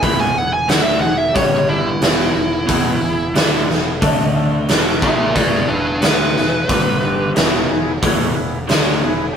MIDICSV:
0, 0, Header, 1, 6, 480
1, 0, Start_track
1, 0, Tempo, 666667
1, 17, Time_signature, 4, 2, 24, 8
1, 6745, End_track
2, 0, Start_track
2, 0, Title_t, "Lead electric guitar"
2, 0, Program_c, 0, 29
2, 21, Note_on_c, 0, 83, 88
2, 136, Note_off_c, 0, 83, 0
2, 146, Note_on_c, 0, 80, 87
2, 271, Note_off_c, 0, 80, 0
2, 271, Note_on_c, 0, 78, 88
2, 381, Note_off_c, 0, 78, 0
2, 385, Note_on_c, 0, 80, 87
2, 497, Note_off_c, 0, 80, 0
2, 506, Note_on_c, 0, 78, 90
2, 596, Note_off_c, 0, 78, 0
2, 598, Note_on_c, 0, 76, 90
2, 722, Note_off_c, 0, 76, 0
2, 725, Note_on_c, 0, 78, 93
2, 847, Note_off_c, 0, 78, 0
2, 847, Note_on_c, 0, 76, 86
2, 968, Note_off_c, 0, 76, 0
2, 978, Note_on_c, 0, 73, 82
2, 1210, Note_off_c, 0, 73, 0
2, 1216, Note_on_c, 0, 64, 107
2, 2628, Note_off_c, 0, 64, 0
2, 3624, Note_on_c, 0, 68, 73
2, 3626, Note_on_c, 0, 76, 77
2, 3848, Note_off_c, 0, 68, 0
2, 3850, Note_on_c, 0, 71, 76
2, 3851, Note_off_c, 0, 76, 0
2, 3854, Note_on_c, 0, 74, 87
2, 4078, Note_off_c, 0, 71, 0
2, 4087, Note_off_c, 0, 74, 0
2, 4094, Note_on_c, 0, 62, 76
2, 4101, Note_on_c, 0, 71, 85
2, 4319, Note_off_c, 0, 62, 0
2, 4324, Note_off_c, 0, 71, 0
2, 4332, Note_on_c, 0, 71, 101
2, 5266, Note_off_c, 0, 71, 0
2, 6745, End_track
3, 0, Start_track
3, 0, Title_t, "Tonewheel organ"
3, 0, Program_c, 1, 16
3, 0, Note_on_c, 1, 59, 84
3, 3, Note_on_c, 1, 68, 95
3, 6, Note_on_c, 1, 64, 75
3, 168, Note_off_c, 1, 59, 0
3, 178, Note_off_c, 1, 68, 0
3, 179, Note_off_c, 1, 64, 0
3, 244, Note_on_c, 1, 59, 60
3, 258, Note_on_c, 1, 64, 60
3, 262, Note_on_c, 1, 68, 61
3, 419, Note_off_c, 1, 59, 0
3, 426, Note_off_c, 1, 64, 0
3, 427, Note_off_c, 1, 68, 0
3, 482, Note_on_c, 1, 59, 65
3, 487, Note_on_c, 1, 64, 69
3, 494, Note_on_c, 1, 68, 81
3, 657, Note_off_c, 1, 59, 0
3, 660, Note_off_c, 1, 64, 0
3, 663, Note_off_c, 1, 68, 0
3, 718, Note_on_c, 1, 64, 56
3, 731, Note_on_c, 1, 59, 69
3, 739, Note_on_c, 1, 68, 76
3, 895, Note_off_c, 1, 64, 0
3, 902, Note_off_c, 1, 59, 0
3, 905, Note_off_c, 1, 68, 0
3, 946, Note_on_c, 1, 55, 94
3, 956, Note_on_c, 1, 62, 76
3, 963, Note_on_c, 1, 67, 93
3, 1129, Note_off_c, 1, 55, 0
3, 1134, Note_off_c, 1, 62, 0
3, 1138, Note_off_c, 1, 67, 0
3, 1212, Note_on_c, 1, 55, 70
3, 1212, Note_on_c, 1, 62, 55
3, 1225, Note_on_c, 1, 67, 69
3, 1382, Note_off_c, 1, 55, 0
3, 1382, Note_off_c, 1, 62, 0
3, 1389, Note_off_c, 1, 67, 0
3, 1454, Note_on_c, 1, 59, 73
3, 1457, Note_on_c, 1, 64, 68
3, 1465, Note_on_c, 1, 68, 81
3, 1623, Note_off_c, 1, 59, 0
3, 1625, Note_off_c, 1, 64, 0
3, 1628, Note_off_c, 1, 68, 0
3, 1684, Note_on_c, 1, 59, 64
3, 1692, Note_on_c, 1, 64, 63
3, 1699, Note_on_c, 1, 68, 68
3, 1858, Note_off_c, 1, 59, 0
3, 1862, Note_off_c, 1, 64, 0
3, 1866, Note_off_c, 1, 68, 0
3, 1927, Note_on_c, 1, 59, 106
3, 1938, Note_on_c, 1, 64, 88
3, 1938, Note_on_c, 1, 68, 118
3, 2100, Note_off_c, 1, 59, 0
3, 2105, Note_off_c, 1, 64, 0
3, 2105, Note_off_c, 1, 68, 0
3, 2168, Note_on_c, 1, 59, 71
3, 2186, Note_on_c, 1, 64, 67
3, 2190, Note_on_c, 1, 68, 81
3, 2340, Note_off_c, 1, 59, 0
3, 2349, Note_off_c, 1, 64, 0
3, 2351, Note_off_c, 1, 68, 0
3, 2423, Note_on_c, 1, 64, 75
3, 2424, Note_on_c, 1, 59, 75
3, 2425, Note_on_c, 1, 71, 91
3, 2588, Note_off_c, 1, 59, 0
3, 2588, Note_off_c, 1, 64, 0
3, 2589, Note_off_c, 1, 71, 0
3, 2661, Note_on_c, 1, 59, 76
3, 2661, Note_on_c, 1, 64, 74
3, 2672, Note_on_c, 1, 68, 89
3, 2827, Note_off_c, 1, 59, 0
3, 2827, Note_off_c, 1, 64, 0
3, 2832, Note_off_c, 1, 68, 0
3, 2890, Note_on_c, 1, 57, 104
3, 2893, Note_on_c, 1, 69, 112
3, 2899, Note_on_c, 1, 62, 89
3, 3062, Note_off_c, 1, 57, 0
3, 3063, Note_off_c, 1, 69, 0
3, 3066, Note_off_c, 1, 62, 0
3, 3127, Note_on_c, 1, 57, 81
3, 3134, Note_on_c, 1, 62, 70
3, 3139, Note_on_c, 1, 69, 85
3, 3300, Note_off_c, 1, 57, 0
3, 3303, Note_off_c, 1, 62, 0
3, 3306, Note_off_c, 1, 69, 0
3, 3385, Note_on_c, 1, 64, 90
3, 3391, Note_on_c, 1, 68, 84
3, 3399, Note_on_c, 1, 71, 94
3, 3549, Note_off_c, 1, 64, 0
3, 3552, Note_off_c, 1, 68, 0
3, 3556, Note_off_c, 1, 71, 0
3, 3629, Note_on_c, 1, 64, 65
3, 3642, Note_on_c, 1, 68, 62
3, 3657, Note_on_c, 1, 71, 75
3, 3791, Note_off_c, 1, 64, 0
3, 3798, Note_off_c, 1, 68, 0
3, 3805, Note_off_c, 1, 71, 0
3, 3875, Note_on_c, 1, 64, 85
3, 3885, Note_on_c, 1, 73, 83
3, 3888, Note_on_c, 1, 68, 78
3, 4034, Note_off_c, 1, 64, 0
3, 4039, Note_off_c, 1, 73, 0
3, 4040, Note_off_c, 1, 68, 0
3, 4113, Note_on_c, 1, 64, 55
3, 4134, Note_on_c, 1, 68, 51
3, 4136, Note_on_c, 1, 71, 68
3, 4273, Note_off_c, 1, 64, 0
3, 4284, Note_off_c, 1, 68, 0
3, 4285, Note_off_c, 1, 71, 0
3, 4348, Note_on_c, 1, 64, 72
3, 4354, Note_on_c, 1, 68, 66
3, 4361, Note_on_c, 1, 71, 74
3, 4510, Note_off_c, 1, 64, 0
3, 4514, Note_off_c, 1, 68, 0
3, 4517, Note_off_c, 1, 71, 0
3, 4588, Note_on_c, 1, 64, 69
3, 4597, Note_on_c, 1, 68, 62
3, 4606, Note_on_c, 1, 71, 75
3, 4751, Note_off_c, 1, 64, 0
3, 4755, Note_off_c, 1, 68, 0
3, 4760, Note_off_c, 1, 71, 0
3, 4813, Note_on_c, 1, 62, 90
3, 4833, Note_on_c, 1, 67, 80
3, 4836, Note_on_c, 1, 74, 93
3, 4983, Note_off_c, 1, 62, 0
3, 4993, Note_off_c, 1, 67, 0
3, 4994, Note_off_c, 1, 74, 0
3, 5067, Note_on_c, 1, 62, 79
3, 5073, Note_on_c, 1, 67, 67
3, 5086, Note_on_c, 1, 74, 90
3, 5230, Note_off_c, 1, 62, 0
3, 5233, Note_off_c, 1, 67, 0
3, 5240, Note_off_c, 1, 74, 0
3, 5290, Note_on_c, 1, 64, 88
3, 5305, Note_on_c, 1, 68, 82
3, 5310, Note_on_c, 1, 71, 101
3, 5462, Note_off_c, 1, 64, 0
3, 5469, Note_off_c, 1, 68, 0
3, 5471, Note_off_c, 1, 71, 0
3, 5533, Note_on_c, 1, 64, 81
3, 5541, Note_on_c, 1, 68, 78
3, 5551, Note_on_c, 1, 71, 84
3, 5703, Note_off_c, 1, 64, 0
3, 5707, Note_off_c, 1, 68, 0
3, 5712, Note_off_c, 1, 71, 0
3, 5790, Note_on_c, 1, 64, 100
3, 5799, Note_on_c, 1, 68, 99
3, 5805, Note_on_c, 1, 73, 122
3, 5951, Note_off_c, 1, 64, 0
3, 5956, Note_off_c, 1, 68, 0
3, 5959, Note_off_c, 1, 73, 0
3, 6002, Note_on_c, 1, 64, 79
3, 6010, Note_on_c, 1, 68, 63
3, 6016, Note_on_c, 1, 71, 83
3, 6178, Note_off_c, 1, 64, 0
3, 6182, Note_off_c, 1, 68, 0
3, 6185, Note_off_c, 1, 71, 0
3, 6259, Note_on_c, 1, 64, 87
3, 6269, Note_on_c, 1, 68, 77
3, 6271, Note_on_c, 1, 73, 85
3, 6426, Note_off_c, 1, 64, 0
3, 6431, Note_off_c, 1, 68, 0
3, 6432, Note_off_c, 1, 73, 0
3, 6497, Note_on_c, 1, 64, 81
3, 6503, Note_on_c, 1, 68, 69
3, 6508, Note_on_c, 1, 71, 85
3, 6665, Note_off_c, 1, 64, 0
3, 6668, Note_off_c, 1, 68, 0
3, 6671, Note_off_c, 1, 71, 0
3, 6712, Note_on_c, 1, 62, 89
3, 6720, Note_on_c, 1, 67, 72
3, 6745, Note_off_c, 1, 62, 0
3, 6745, Note_off_c, 1, 67, 0
3, 6745, End_track
4, 0, Start_track
4, 0, Title_t, "Overdriven electric guitar"
4, 0, Program_c, 2, 29
4, 17, Note_on_c, 2, 40, 74
4, 21, Note_on_c, 2, 47, 106
4, 25, Note_on_c, 2, 52, 84
4, 246, Note_off_c, 2, 40, 0
4, 248, Note_off_c, 2, 47, 0
4, 254, Note_off_c, 2, 52, 0
4, 254, Note_on_c, 2, 40, 62
4, 256, Note_on_c, 2, 47, 63
4, 448, Note_off_c, 2, 40, 0
4, 449, Note_off_c, 2, 47, 0
4, 495, Note_on_c, 2, 50, 75
4, 498, Note_on_c, 2, 57, 91
4, 503, Note_on_c, 2, 62, 83
4, 729, Note_off_c, 2, 50, 0
4, 730, Note_off_c, 2, 57, 0
4, 733, Note_off_c, 2, 62, 0
4, 737, Note_on_c, 2, 40, 70
4, 738, Note_on_c, 2, 47, 66
4, 929, Note_off_c, 2, 40, 0
4, 930, Note_off_c, 2, 47, 0
4, 973, Note_on_c, 2, 43, 78
4, 978, Note_on_c, 2, 50, 83
4, 982, Note_on_c, 2, 55, 85
4, 1445, Note_off_c, 2, 43, 0
4, 1447, Note_off_c, 2, 50, 0
4, 1448, Note_on_c, 2, 40, 83
4, 1450, Note_off_c, 2, 55, 0
4, 1450, Note_on_c, 2, 47, 79
4, 1453, Note_on_c, 2, 52, 89
4, 1672, Note_off_c, 2, 40, 0
4, 1676, Note_off_c, 2, 47, 0
4, 1681, Note_on_c, 2, 40, 64
4, 1685, Note_on_c, 2, 47, 70
4, 1687, Note_off_c, 2, 52, 0
4, 1881, Note_off_c, 2, 40, 0
4, 1883, Note_off_c, 2, 47, 0
4, 1914, Note_on_c, 2, 40, 77
4, 1916, Note_on_c, 2, 47, 81
4, 1921, Note_on_c, 2, 52, 91
4, 2158, Note_off_c, 2, 40, 0
4, 2159, Note_off_c, 2, 47, 0
4, 2162, Note_off_c, 2, 52, 0
4, 2169, Note_on_c, 2, 40, 55
4, 2169, Note_on_c, 2, 47, 60
4, 2365, Note_off_c, 2, 40, 0
4, 2365, Note_off_c, 2, 47, 0
4, 2408, Note_on_c, 2, 50, 74
4, 2411, Note_on_c, 2, 62, 96
4, 2413, Note_on_c, 2, 57, 70
4, 2645, Note_off_c, 2, 50, 0
4, 2647, Note_off_c, 2, 62, 0
4, 2648, Note_off_c, 2, 57, 0
4, 2651, Note_on_c, 2, 40, 61
4, 2653, Note_on_c, 2, 47, 73
4, 2846, Note_off_c, 2, 40, 0
4, 2847, Note_off_c, 2, 47, 0
4, 2889, Note_on_c, 2, 50, 84
4, 2891, Note_on_c, 2, 57, 82
4, 2894, Note_on_c, 2, 62, 95
4, 3366, Note_off_c, 2, 50, 0
4, 3367, Note_off_c, 2, 57, 0
4, 3368, Note_off_c, 2, 62, 0
4, 3374, Note_on_c, 2, 40, 72
4, 3375, Note_on_c, 2, 47, 78
4, 3380, Note_on_c, 2, 52, 90
4, 3608, Note_off_c, 2, 40, 0
4, 3609, Note_off_c, 2, 47, 0
4, 3611, Note_off_c, 2, 52, 0
4, 3621, Note_on_c, 2, 46, 89
4, 3623, Note_on_c, 2, 53, 89
4, 3624, Note_on_c, 2, 58, 89
4, 3852, Note_off_c, 2, 46, 0
4, 3853, Note_off_c, 2, 53, 0
4, 3853, Note_off_c, 2, 58, 0
4, 3860, Note_on_c, 2, 40, 97
4, 3861, Note_on_c, 2, 47, 97
4, 3867, Note_on_c, 2, 52, 97
4, 4087, Note_off_c, 2, 40, 0
4, 4089, Note_off_c, 2, 47, 0
4, 4095, Note_off_c, 2, 52, 0
4, 4096, Note_on_c, 2, 40, 50
4, 4098, Note_on_c, 2, 47, 60
4, 4289, Note_off_c, 2, 40, 0
4, 4289, Note_off_c, 2, 47, 0
4, 4330, Note_on_c, 2, 50, 83
4, 4334, Note_on_c, 2, 57, 88
4, 4337, Note_on_c, 2, 62, 88
4, 4567, Note_off_c, 2, 50, 0
4, 4568, Note_off_c, 2, 57, 0
4, 4570, Note_off_c, 2, 62, 0
4, 4587, Note_on_c, 2, 40, 56
4, 4587, Note_on_c, 2, 47, 70
4, 4774, Note_off_c, 2, 40, 0
4, 4774, Note_off_c, 2, 47, 0
4, 4809, Note_on_c, 2, 43, 86
4, 4815, Note_on_c, 2, 50, 86
4, 4816, Note_on_c, 2, 55, 101
4, 5286, Note_off_c, 2, 43, 0
4, 5289, Note_off_c, 2, 50, 0
4, 5290, Note_off_c, 2, 55, 0
4, 5294, Note_on_c, 2, 47, 81
4, 5296, Note_on_c, 2, 40, 74
4, 5302, Note_on_c, 2, 52, 89
4, 5526, Note_off_c, 2, 47, 0
4, 5527, Note_off_c, 2, 40, 0
4, 5532, Note_off_c, 2, 52, 0
4, 5535, Note_on_c, 2, 47, 61
4, 5536, Note_on_c, 2, 40, 57
4, 5728, Note_off_c, 2, 47, 0
4, 5729, Note_off_c, 2, 40, 0
4, 5777, Note_on_c, 2, 47, 94
4, 5778, Note_on_c, 2, 40, 86
4, 5782, Note_on_c, 2, 52, 106
4, 6006, Note_off_c, 2, 40, 0
4, 6008, Note_off_c, 2, 47, 0
4, 6012, Note_off_c, 2, 52, 0
4, 6015, Note_on_c, 2, 40, 57
4, 6017, Note_on_c, 2, 47, 70
4, 6208, Note_off_c, 2, 40, 0
4, 6209, Note_off_c, 2, 47, 0
4, 6249, Note_on_c, 2, 50, 76
4, 6253, Note_on_c, 2, 57, 81
4, 6258, Note_on_c, 2, 62, 83
4, 6486, Note_off_c, 2, 50, 0
4, 6488, Note_off_c, 2, 57, 0
4, 6491, Note_off_c, 2, 62, 0
4, 6492, Note_on_c, 2, 40, 61
4, 6495, Note_on_c, 2, 47, 66
4, 6687, Note_off_c, 2, 40, 0
4, 6688, Note_off_c, 2, 47, 0
4, 6745, End_track
5, 0, Start_track
5, 0, Title_t, "Fingered electric bass"
5, 0, Program_c, 3, 33
5, 19, Note_on_c, 3, 28, 87
5, 241, Note_off_c, 3, 28, 0
5, 255, Note_on_c, 3, 28, 74
5, 479, Note_off_c, 3, 28, 0
5, 487, Note_on_c, 3, 38, 90
5, 715, Note_off_c, 3, 38, 0
5, 723, Note_on_c, 3, 28, 79
5, 952, Note_off_c, 3, 28, 0
5, 976, Note_on_c, 3, 31, 89
5, 1428, Note_off_c, 3, 31, 0
5, 1450, Note_on_c, 3, 28, 77
5, 1676, Note_off_c, 3, 28, 0
5, 1692, Note_on_c, 3, 28, 77
5, 1918, Note_off_c, 3, 28, 0
5, 1938, Note_on_c, 3, 28, 88
5, 2161, Note_off_c, 3, 28, 0
5, 2169, Note_on_c, 3, 28, 69
5, 2396, Note_off_c, 3, 28, 0
5, 2399, Note_on_c, 3, 38, 85
5, 2631, Note_off_c, 3, 38, 0
5, 2651, Note_on_c, 3, 28, 72
5, 2877, Note_off_c, 3, 28, 0
5, 2894, Note_on_c, 3, 38, 87
5, 3347, Note_off_c, 3, 38, 0
5, 3372, Note_on_c, 3, 28, 82
5, 3597, Note_off_c, 3, 28, 0
5, 3616, Note_on_c, 3, 34, 94
5, 3840, Note_off_c, 3, 34, 0
5, 3857, Note_on_c, 3, 28, 83
5, 4080, Note_off_c, 3, 28, 0
5, 4102, Note_on_c, 3, 28, 70
5, 4323, Note_off_c, 3, 28, 0
5, 4341, Note_on_c, 3, 38, 94
5, 4562, Note_off_c, 3, 38, 0
5, 4580, Note_on_c, 3, 28, 70
5, 4802, Note_off_c, 3, 28, 0
5, 4816, Note_on_c, 3, 31, 86
5, 5268, Note_off_c, 3, 31, 0
5, 5306, Note_on_c, 3, 28, 84
5, 5525, Note_off_c, 3, 28, 0
5, 5547, Note_on_c, 3, 28, 75
5, 5766, Note_off_c, 3, 28, 0
5, 5777, Note_on_c, 3, 28, 95
5, 6000, Note_off_c, 3, 28, 0
5, 6028, Note_on_c, 3, 28, 60
5, 6246, Note_off_c, 3, 28, 0
5, 6271, Note_on_c, 3, 38, 82
5, 6488, Note_off_c, 3, 38, 0
5, 6501, Note_on_c, 3, 28, 69
5, 6722, Note_off_c, 3, 28, 0
5, 6745, End_track
6, 0, Start_track
6, 0, Title_t, "Drums"
6, 20, Note_on_c, 9, 36, 93
6, 23, Note_on_c, 9, 46, 46
6, 92, Note_off_c, 9, 36, 0
6, 95, Note_off_c, 9, 46, 0
6, 497, Note_on_c, 9, 46, 44
6, 503, Note_on_c, 9, 38, 100
6, 569, Note_off_c, 9, 46, 0
6, 575, Note_off_c, 9, 38, 0
6, 976, Note_on_c, 9, 36, 109
6, 982, Note_on_c, 9, 46, 50
6, 1048, Note_off_c, 9, 36, 0
6, 1054, Note_off_c, 9, 46, 0
6, 1453, Note_on_c, 9, 46, 50
6, 1459, Note_on_c, 9, 38, 99
6, 1525, Note_off_c, 9, 46, 0
6, 1531, Note_off_c, 9, 38, 0
6, 1935, Note_on_c, 9, 36, 98
6, 1939, Note_on_c, 9, 46, 48
6, 2007, Note_off_c, 9, 36, 0
6, 2011, Note_off_c, 9, 46, 0
6, 2416, Note_on_c, 9, 46, 49
6, 2422, Note_on_c, 9, 38, 93
6, 2488, Note_off_c, 9, 46, 0
6, 2494, Note_off_c, 9, 38, 0
6, 2664, Note_on_c, 9, 38, 26
6, 2736, Note_off_c, 9, 38, 0
6, 2895, Note_on_c, 9, 36, 113
6, 2895, Note_on_c, 9, 46, 53
6, 2967, Note_off_c, 9, 36, 0
6, 2967, Note_off_c, 9, 46, 0
6, 3375, Note_on_c, 9, 46, 55
6, 3381, Note_on_c, 9, 38, 99
6, 3447, Note_off_c, 9, 46, 0
6, 3453, Note_off_c, 9, 38, 0
6, 3616, Note_on_c, 9, 36, 94
6, 3688, Note_off_c, 9, 36, 0
6, 3857, Note_on_c, 9, 36, 93
6, 3858, Note_on_c, 9, 46, 52
6, 3929, Note_off_c, 9, 36, 0
6, 3930, Note_off_c, 9, 46, 0
6, 4334, Note_on_c, 9, 46, 45
6, 4340, Note_on_c, 9, 38, 95
6, 4406, Note_off_c, 9, 46, 0
6, 4412, Note_off_c, 9, 38, 0
6, 4585, Note_on_c, 9, 38, 26
6, 4657, Note_off_c, 9, 38, 0
6, 4819, Note_on_c, 9, 36, 115
6, 4820, Note_on_c, 9, 46, 50
6, 4891, Note_off_c, 9, 36, 0
6, 4892, Note_off_c, 9, 46, 0
6, 5299, Note_on_c, 9, 46, 49
6, 5305, Note_on_c, 9, 38, 107
6, 5371, Note_off_c, 9, 46, 0
6, 5377, Note_off_c, 9, 38, 0
6, 5779, Note_on_c, 9, 36, 101
6, 5780, Note_on_c, 9, 46, 51
6, 5851, Note_off_c, 9, 36, 0
6, 5852, Note_off_c, 9, 46, 0
6, 6257, Note_on_c, 9, 46, 46
6, 6263, Note_on_c, 9, 38, 92
6, 6329, Note_off_c, 9, 46, 0
6, 6335, Note_off_c, 9, 38, 0
6, 6745, End_track
0, 0, End_of_file